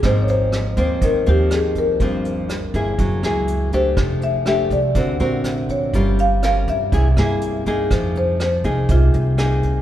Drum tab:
HH |xxxxxxxx|xxxxxxxx|xxxxxxxx|xxxxxxxx|
SD |r-r---r-|--r--r--|r-r---r-|--r--r--|
BD |o--oo--o|o--oo--o|o--oo--o|o--oo--o|

HH |xxxxxxxx|
SD |r-r---r-|
BD |o--oo--o|